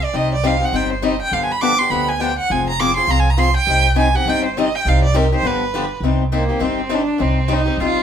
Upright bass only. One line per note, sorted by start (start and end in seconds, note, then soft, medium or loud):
0.14 0.61 C2 medium
0.72 1.19 G1 medium
1.32 1.79 G1 medium
1.90 2.37 D2 medium
2.50 2.97 F1 medium
3.07 3.55 C2 medium
3.67 4.14 C2 medium
4.26 4.73 G1 medium
4.85 5.32 C2 medium
5.43 5.90 G1 medium
6.00 6.48 C2 medium
6.61 7.08 G1 medium
7.20 7.67 C2 medium
7.77 8.03 G1 medium